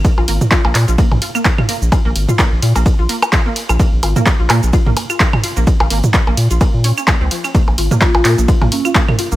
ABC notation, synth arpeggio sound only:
X:1
M:4/4
L:1/16
Q:"Swing 16ths" 1/4=128
K:Bbm
V:1 name="Synth arpeggio sound"
z F B, z F B, z F B, z F B, z F B, z | F B, z F B, z F B, z F B, z F B, z F | B, z F B, z F B, z F B, z F B, z F B, | z F B, z F B, z F B, z D D B, C F, D |
B, B, F B, B, F B, B, F B, B, F B, B, F B, |]